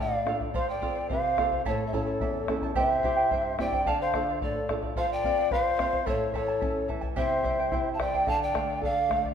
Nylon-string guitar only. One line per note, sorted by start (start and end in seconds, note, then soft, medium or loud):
0.00 0.53 A2 medium
0.00 0.15 D4 medium
0.00 0.15 F4 medium
0.00 0.16 A4 medium
0.26 0.48 D4 medium
0.26 0.48 F4 soft
0.26 0.49 A4 medium
0.54 1.08 F3 medium
0.82 1.26 C4 medium
0.82 1.27 F4 soft
0.82 1.27 A4 medium
1.11 1.64 C3 medium
1.38 1.60 C4 medium
1.38 1.60 F4 soft
1.38 1.61 A4 medium
1.66 2.19 A2 medium
1.93 2.37 C#4 medium
1.93 2.37 E4 medium
1.93 2.38 A4 medium
2.22 2.75 E2 medium
2.49 2.71 C#4 medium
2.49 2.71 E4 medium
2.49 2.71 A4 medium
2.77 3.30 C3 medium
3.04 3.48 C4 medium
3.04 3.48 E4 medium
3.04 3.49 G4 medium
3.32 3.85 G2 medium
3.59 3.81 C4 medium
3.59 3.81 E4 medium
3.59 3.82 G4 medium
3.87 4.40 D3 medium
4.14 4.58 D4 medium
4.14 4.59 F4 medium
4.14 4.59 A4 medium
4.42 4.95 A2 medium
4.70 4.92 D4 medium
4.70 4.92 F4 medium
4.70 4.92 A4 medium
4.97 6.04 F3 medium
5.24 5.51 C4 medium
5.52 5.79 C5 medium
5.79 6.06 C4 medium
6.06 7.14 A2 medium
6.35 6.61 E3 medium
6.62 6.89 C#4 medium
6.89 7.16 E3 medium
7.16 8.24 C3 medium
7.44 7.71 G3 medium
7.72 7.99 E4 medium
7.99 8.26 G3 medium
8.27 9.34 D3 medium
8.54 8.81 A3 medium
8.82 9.09 A4 medium
9.09 9.34 A3 medium